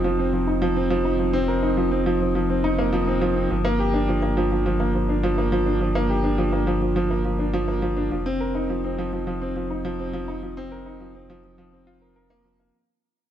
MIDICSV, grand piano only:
0, 0, Header, 1, 2, 480
1, 0, Start_track
1, 0, Tempo, 576923
1, 998, Time_signature, 4, 2, 24, 8
1, 11066, End_track
2, 0, Start_track
2, 0, Title_t, "Grand piano"
2, 0, Program_c, 0, 0
2, 0, Control_c, 0, 64, 127
2, 0, Note_on_c, 0, 53, 74
2, 0, Note_on_c, 0, 60, 78
2, 0, Note_on_c, 0, 63, 73
2, 0, Note_on_c, 0, 70, 78
2, 35, Note_off_c, 0, 53, 0
2, 35, Note_on_c, 0, 53, 98
2, 151, Note_off_c, 0, 53, 0
2, 158, Note_off_c, 0, 60, 0
2, 158, Note_on_c, 0, 60, 75
2, 272, Note_off_c, 0, 60, 0
2, 275, Note_on_c, 0, 53, 69
2, 391, Note_off_c, 0, 53, 0
2, 394, Note_off_c, 0, 63, 0
2, 394, Note_on_c, 0, 63, 66
2, 510, Note_off_c, 0, 63, 0
2, 513, Note_on_c, 0, 53, 106
2, 584, Note_off_c, 0, 53, 0
2, 635, Note_on_c, 0, 60, 84
2, 751, Note_off_c, 0, 60, 0
2, 751, Note_on_c, 0, 53, 106
2, 869, Note_off_c, 0, 53, 0
2, 872, Note_on_c, 0, 63, 78
2, 989, Note_off_c, 0, 63, 0
2, 989, Note_on_c, 0, 53, 78
2, 1108, Note_off_c, 0, 53, 0
2, 1109, Note_on_c, 0, 60, 108
2, 1228, Note_off_c, 0, 60, 0
2, 1231, Note_off_c, 0, 70, 0
2, 1231, Note_on_c, 0, 70, 80
2, 1349, Note_off_c, 0, 70, 0
2, 1351, Note_on_c, 0, 63, 76
2, 1469, Note_off_c, 0, 63, 0
2, 1474, Note_on_c, 0, 53, 85
2, 1590, Note_off_c, 0, 53, 0
2, 1593, Note_on_c, 0, 60, 80
2, 1710, Note_off_c, 0, 60, 0
2, 1715, Note_on_c, 0, 53, 99
2, 1824, Note_off_c, 0, 53, 0
2, 1837, Note_on_c, 0, 53, 73
2, 1944, Note_off_c, 0, 53, 0
2, 1956, Note_on_c, 0, 53, 95
2, 2071, Note_off_c, 0, 53, 0
2, 2077, Note_on_c, 0, 60, 74
2, 2192, Note_off_c, 0, 60, 0
2, 2197, Note_on_c, 0, 63, 95
2, 2312, Note_off_c, 0, 63, 0
2, 2317, Note_on_c, 0, 58, 90
2, 2432, Note_off_c, 0, 58, 0
2, 2434, Note_on_c, 0, 53, 103
2, 2505, Note_off_c, 0, 53, 0
2, 2556, Note_on_c, 0, 60, 77
2, 2671, Note_off_c, 0, 60, 0
2, 2674, Note_on_c, 0, 53, 100
2, 2790, Note_off_c, 0, 53, 0
2, 2797, Note_on_c, 0, 60, 76
2, 2912, Note_off_c, 0, 60, 0
2, 2916, Note_on_c, 0, 53, 82
2, 2931, Control_c, 0, 64, 0
2, 3031, Note_off_c, 0, 53, 0
2, 3034, Note_on_c, 0, 58, 108
2, 3069, Control_c, 0, 64, 127
2, 3150, Note_off_c, 0, 58, 0
2, 3156, Note_on_c, 0, 67, 77
2, 3271, Note_off_c, 0, 67, 0
2, 3276, Note_on_c, 0, 62, 78
2, 3391, Note_off_c, 0, 62, 0
2, 3397, Note_on_c, 0, 53, 84
2, 3512, Note_off_c, 0, 53, 0
2, 3514, Note_on_c, 0, 58, 80
2, 3630, Note_off_c, 0, 58, 0
2, 3636, Note_on_c, 0, 53, 97
2, 3744, Note_off_c, 0, 53, 0
2, 3756, Note_on_c, 0, 53, 70
2, 3863, Note_off_c, 0, 53, 0
2, 3876, Note_on_c, 0, 53, 94
2, 3991, Note_off_c, 0, 53, 0
2, 3992, Note_on_c, 0, 58, 78
2, 4109, Note_off_c, 0, 58, 0
2, 4116, Note_on_c, 0, 53, 68
2, 4231, Note_off_c, 0, 53, 0
2, 4236, Note_on_c, 0, 62, 66
2, 4351, Note_off_c, 0, 62, 0
2, 4354, Note_on_c, 0, 53, 105
2, 4425, Note_off_c, 0, 53, 0
2, 4476, Note_on_c, 0, 58, 78
2, 4591, Note_off_c, 0, 58, 0
2, 4593, Note_on_c, 0, 53, 104
2, 4710, Note_off_c, 0, 53, 0
2, 4711, Note_on_c, 0, 62, 79
2, 4829, Note_off_c, 0, 62, 0
2, 4833, Note_on_c, 0, 53, 77
2, 4950, Note_off_c, 0, 53, 0
2, 4953, Note_on_c, 0, 58, 101
2, 5070, Note_off_c, 0, 58, 0
2, 5071, Note_on_c, 0, 67, 76
2, 5189, Note_off_c, 0, 67, 0
2, 5189, Note_on_c, 0, 62, 77
2, 5308, Note_off_c, 0, 62, 0
2, 5308, Note_on_c, 0, 53, 89
2, 5427, Note_off_c, 0, 53, 0
2, 5429, Note_on_c, 0, 58, 76
2, 5548, Note_off_c, 0, 58, 0
2, 5550, Note_on_c, 0, 53, 98
2, 5660, Note_off_c, 0, 53, 0
2, 5672, Note_on_c, 0, 53, 73
2, 5777, Note_off_c, 0, 53, 0
2, 5790, Note_on_c, 0, 53, 103
2, 5908, Note_off_c, 0, 53, 0
2, 5913, Note_on_c, 0, 58, 79
2, 6030, Note_off_c, 0, 58, 0
2, 6031, Note_on_c, 0, 53, 75
2, 6148, Note_on_c, 0, 62, 72
2, 6149, Note_off_c, 0, 53, 0
2, 6267, Note_off_c, 0, 62, 0
2, 6269, Note_on_c, 0, 53, 106
2, 6342, Note_off_c, 0, 53, 0
2, 6389, Note_on_c, 0, 58, 79
2, 6508, Note_off_c, 0, 58, 0
2, 6508, Note_on_c, 0, 53, 100
2, 6627, Note_off_c, 0, 53, 0
2, 6629, Note_on_c, 0, 62, 80
2, 6748, Note_off_c, 0, 62, 0
2, 6751, Note_on_c, 0, 53, 77
2, 6768, Control_c, 0, 64, 0
2, 6869, Note_off_c, 0, 53, 0
2, 6872, Note_on_c, 0, 60, 105
2, 6917, Control_c, 0, 64, 127
2, 6989, Note_off_c, 0, 60, 0
2, 6993, Note_on_c, 0, 70, 77
2, 7110, Note_off_c, 0, 70, 0
2, 7113, Note_on_c, 0, 63, 76
2, 7230, Note_off_c, 0, 63, 0
2, 7235, Note_on_c, 0, 53, 82
2, 7351, Note_off_c, 0, 53, 0
2, 7356, Note_on_c, 0, 60, 76
2, 7471, Note_off_c, 0, 60, 0
2, 7475, Note_on_c, 0, 53, 96
2, 7583, Note_off_c, 0, 53, 0
2, 7595, Note_on_c, 0, 53, 74
2, 7700, Note_off_c, 0, 53, 0
2, 7712, Note_on_c, 0, 53, 99
2, 7829, Note_off_c, 0, 53, 0
2, 7833, Note_on_c, 0, 60, 80
2, 7950, Note_off_c, 0, 60, 0
2, 7953, Note_on_c, 0, 53, 77
2, 8070, Note_off_c, 0, 53, 0
2, 8075, Note_on_c, 0, 63, 73
2, 8191, Note_off_c, 0, 63, 0
2, 8192, Note_on_c, 0, 53, 106
2, 8264, Note_off_c, 0, 53, 0
2, 8313, Note_on_c, 0, 60, 79
2, 8430, Note_off_c, 0, 60, 0
2, 8431, Note_on_c, 0, 53, 102
2, 8549, Note_off_c, 0, 53, 0
2, 8553, Note_on_c, 0, 63, 82
2, 8670, Note_off_c, 0, 63, 0
2, 8675, Note_on_c, 0, 53, 77
2, 8791, Note_off_c, 0, 53, 0
2, 8795, Note_on_c, 0, 60, 108
2, 8911, Note_off_c, 0, 60, 0
2, 8916, Note_on_c, 0, 70, 83
2, 9031, Note_off_c, 0, 70, 0
2, 9037, Note_on_c, 0, 63, 82
2, 9152, Note_off_c, 0, 63, 0
2, 9155, Note_on_c, 0, 53, 88
2, 9271, Note_off_c, 0, 53, 0
2, 9276, Note_on_c, 0, 60, 82
2, 9391, Note_off_c, 0, 60, 0
2, 9399, Note_on_c, 0, 53, 108
2, 9506, Note_off_c, 0, 53, 0
2, 9518, Note_on_c, 0, 53, 78
2, 9623, Note_off_c, 0, 53, 0
2, 9635, Note_on_c, 0, 53, 101
2, 9751, Note_off_c, 0, 53, 0
2, 9755, Note_on_c, 0, 60, 77
2, 9871, Note_off_c, 0, 60, 0
2, 9875, Note_on_c, 0, 65, 96
2, 9991, Note_off_c, 0, 65, 0
2, 9996, Note_on_c, 0, 70, 72
2, 10104, Note_off_c, 0, 70, 0
2, 10117, Note_on_c, 0, 70, 83
2, 10186, Note_off_c, 0, 70, 0
2, 10236, Note_on_c, 0, 58, 111
2, 10351, Note_off_c, 0, 58, 0
2, 10358, Note_on_c, 0, 53, 78
2, 10472, Note_off_c, 0, 53, 0
2, 10479, Note_on_c, 0, 58, 83
2, 10547, Note_off_c, 0, 58, 0
2, 10608, Control_c, 0, 64, 0
2, 11066, End_track
0, 0, End_of_file